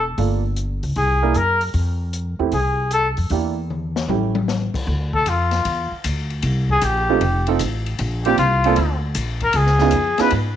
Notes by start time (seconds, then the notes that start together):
Already playing: E1
0.18 G1 A#3 D4 F4 A4, kick, open hi-hat
0.56 closed hi-hat
0.83 C#2, open hi-hat
0.96 C2 G#4, kick, open hi-hat
1.22 A#3 D4 E4 A#4
1.34 F#2 A#4, closed hi-hat
1.61 open hi-hat
1.74 F2, kick, open hi-hat
2.13 closed hi-hat
2.39 E2 A3 C4 E4 G4
2.52 C2 G#4, kick, open hi-hat
2.91 A4, closed hi-hat
3.17 F2, open hi-hat
3.30 E2 A#3 D4 E4 G4, kick, open hi-hat
3.70 mid tom
3.96 snare
4.08 A1 A3 C#4 E4 G4, high tom
4.35 high tom
4.48 snare
4.74 muted upright bass stroke, kick, crash
4.87 D2, kick
5.13 A4, kick
5.26 F2 F4, kick, hi-hat pedal, ride
5.51 snare, ride
5.65 E2, kick, ride
5.92 muted upright bass stroke
6.04 D2, kick, hi-hat pedal, ride
6.30 ride
6.42 C2, kick, ride
6.69 G#4, kick
6.81 A#1 G4, hi-hat pedal, ride
7.09 A3 C4 D#4 F4 G4
7.21 F1, kick, ride
7.47 A3 C4 D#4 F4 A4, ride
7.59 A1, kick, hi-hat pedal, ride
7.86 ride
7.99 A#1, kick, ride
8.25 A#3 C4 D4 F4 G4, ride
8.38 C2 F4, kick, hi-hat pedal, ride
8.64 A#3 C4 D4 F4 A4, ride
8.76 D2, kick, ride
9.15 A#1, kick, hi-hat pedal, ride
9.40 A#4, kick, ride
9.53 C#2 G#4, kick, ride
9.67 snare
9.79 B3 C#4 D#4 F4 G#4, snare
9.91 F2, kick, hi-hat pedal, ride
10.18 B3 C#4 D#4 F4 G#4 B4, muted upright bass stroke, snare, ride
10.30 G#2, kick, ride